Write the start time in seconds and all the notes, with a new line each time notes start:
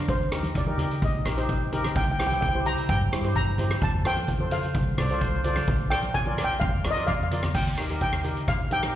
0.08 D#2 C5, kick, closed hi-hat
0.32 D#4 G4 A#4, cross-stick, closed hi-hat
0.43 closed hi-hat, high conga
0.54 D5, kick, closed hi-hat, low conga
0.66 D#4 G4 A#4, high conga
0.78 D#4 G4 A#4, closed hi-hat, low conga
0.91 closed hi-hat
1.02 A#1 D#5, kick, closed hi-hat
1.25 A#1 D#4 G4 A#4, cross-stick, closed hi-hat
1.37 D#4 G4 C5, closed hi-hat
1.49 kick, closed hi-hat, high conga
1.73 D#4 G4 A#4, closed hi-hat, low conga
1.84 cross-stick, closed hi-hat, high conga
1.95 C2 G5, kick, closed hi-hat
2.04 G5
2.12 G5
2.19 E4 G4 C5 G5, cross-stick, closed hi-hat
2.27 G5, closed hi-hat
2.31 G5, high conga
2.41 G5, kick, closed hi-hat, low conga
2.49 G5
2.55 E4 G4 C5
2.66 E4 G4 C5 A#5, closed hi-hat, low conga
2.78 closed hi-hat
2.89 G2 G5, kick, closed hi-hat
3.12 G2 E4 G4 C5, cross-stick, closed hi-hat
3.24 E4 G4 C5, closed hi-hat
3.35 A#5, kick, closed hi-hat, high conga
3.58 E4 G4 C5, closed hi-hat, low conga
3.70 cross-stick, closed hi-hat, high conga
3.81 F2 A5, kick, closed hi-hat
4.05 F4 A4 C5 G5, cross-stick, closed hi-hat
4.16 closed hi-hat, high conga
4.27 kick, closed hi-hat, low conga
4.39 F4 A4 C5, high conga
4.50 F4 A4 C5 F5, closed hi-hat, low conga
4.63 closed hi-hat
4.75 C2, kick, closed hi-hat
4.98 C2 F4 A4 C5 D5, cross-stick, closed hi-hat
5.10 F4 A4 C5, closed hi-hat
5.21 C5, kick, closed hi-hat, high conga
5.44 F4 A4 C5 D5, closed hi-hat, low conga
5.56 cross-stick, closed hi-hat, high conga
5.67 A#1, kick, closed hi-hat
5.90 F4 A#4 D5 G5, cross-stick, closed hi-hat
6.02 closed hi-hat, high conga
6.14 G#5, kick, closed hi-hat
6.26 F4 A#4 D5, high conga
6.38 F4 A#4 D5, cross-stick, closed hi-hat, low conga
6.44 G5
6.50 closed hi-hat
6.60 F2 F5, kick, closed hi-hat
6.84 F2 F4 A#4 D5, cross-stick, closed hi-hat
6.91 D#5
6.96 F4 A#4 D5, closed hi-hat
7.07 D5 F5, kick, closed hi-hat, high conga
7.20 F5, high conga
7.31 F4 A#4 D5, closed hi-hat, low conga
7.43 cross-stick, closed hi-hat, low conga
7.54 D#2 G5, kick, crash
7.77 D#4 G4 A#4, cross-stick, closed hi-hat
7.89 D#4 G4 A#4, closed hi-hat
8.01 G5, kick, closed hi-hat
8.12 cross-stick
8.24 D#4 G4 A#4, closed hi-hat, low conga
8.36 closed hi-hat
8.48 A#1 F5, kick, cross-stick, closed hi-hat
8.71 D#4 G4 A#4 G5, closed hi-hat, high conga
8.83 D#4 G4 A#4, cross-stick, closed hi-hat, high conga